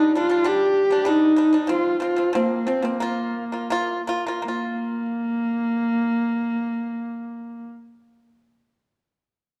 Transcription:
0.00 0.11 G3 loud
0.00 0.11 D4 loud
0.00 0.15 D#4 loud
0.15 0.28 G3 medium
0.15 0.29 D4 medium
0.15 0.48 F4 loud
0.29 0.43 G3 medium
0.29 0.43 D4 medium
0.44 0.82 G3 loud
0.44 0.82 D4 loud
0.44 1.10 G4 loud
0.90 1.03 G3 medium
0.90 1.04 D4 medium
1.05 1.31 G3 loud
1.05 1.31 D4 loud
1.05 1.72 D#4 loud
1.36 1.50 G3 medium
1.36 1.50 D4 medium
1.53 1.66 G3 medium
1.53 1.66 D4 medium
1.67 1.94 F3 medium
1.67 1.95 C4 loud
1.67 2.01 F4 loud
2.00 2.13 F3 medium
2.00 2.14 C4 medium
2.00 2.36 F4 loud
2.16 2.30 F3 medium
2.16 2.31 C4 medium
2.33 2.60 F3 medium
2.33 2.68 A#3 medium
2.33 2.61 C4 loud
2.66 2.80 F3 medium
2.66 2.84 C4 medium
2.66 2.81 C4 medium
2.82 2.97 F3 medium
2.82 4.08 A#3 medium
2.82 2.98 C4 medium
3.00 3.42 A#3 loud
3.00 3.43 F4 loud
3.52 3.67 A#3 medium
3.52 3.68 F4 medium
3.70 4.00 A#3 loud
3.70 4.01 F4 loud
4.07 4.23 A#3 medium
4.07 4.24 F4 loud
4.26 4.41 A#3 medium
4.26 4.43 F4 medium
4.42 7.65 A#3 medium
4.42 7.68 A#3 medium
4.48 7.71 F4 medium

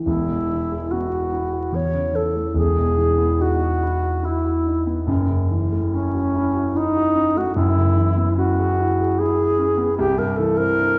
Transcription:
0.06 1.70 E1 medium
0.06 1.70 E2 medium
0.06 0.93 E4 medium
0.29 0.63 B2 soft
0.51 0.84 E3 soft
0.71 1.04 G#3 medium
0.91 1.25 B3 soft
0.91 1.76 F#4 medium
1.13 1.46 F#4 soft
1.33 1.66 E4 medium
1.53 1.73 F#4 medium
1.72 2.53 E2 medium
1.72 2.17 C#5 medium
1.94 2.27 C#3 soft
2.13 2.47 E3 soft
2.13 2.57 A4 medium
2.35 2.56 A3 medium
2.54 5.03 E1 medium
2.54 5.04 E2 medium
2.54 3.43 G#4 loud
2.77 3.11 B2 soft
2.97 3.32 E3 medium
3.18 3.52 B3 medium
3.40 3.74 D#4 medium
3.40 4.26 F#4 medium
3.62 3.96 F#4 medium
3.83 4.17 E4 medium
4.03 4.37 F#4 medium
4.23 4.57 E4 medium
4.23 5.08 E4 medium
4.45 4.78 F#4 medium
4.66 5.00 D#4 medium
4.87 5.08 B3 medium
5.07 7.51 F#1 medium
5.07 7.52 F#2 medium
5.29 5.63 C#3 medium
5.51 5.84 E3 medium
5.72 6.06 A3 medium
5.93 6.78 C#4 medium
5.93 6.27 C#4 medium
6.14 6.48 F#4 medium
6.35 6.68 E4 medium
6.54 6.87 F#4 medium
6.75 7.39 D#4 medium
6.75 7.08 E4 medium
6.96 7.28 F#4 medium
7.15 7.47 C#4 medium
7.36 7.56 A3 medium
7.36 7.55 F#4 medium
7.56 9.95 F#1 medium
7.56 9.95 F#2 medium
7.56 8.36 E4 loud
7.77 8.10 C#3 medium
7.97 8.30 E3 medium
8.17 8.50 B3 medium
8.37 8.70 C#4 medium
8.37 9.20 F#4 loud
8.59 8.91 G#4 medium
8.79 9.11 E4 medium
9.00 9.32 G#4 medium
9.19 9.52 E4 medium
9.19 9.97 G#4 loud
9.40 9.71 G#4 medium
9.59 9.91 C#4 medium
9.77 9.98 B3 medium
9.98 10.99 C2 medium
9.98 10.20 G4 loud
10.18 10.51 G2 medium
10.18 10.38 A#4 medium
10.37 10.71 E3 medium
10.37 10.59 A4 loud
10.57 10.91 C4 medium
10.57 10.99 A#4 loud
10.79 10.99 D4 medium

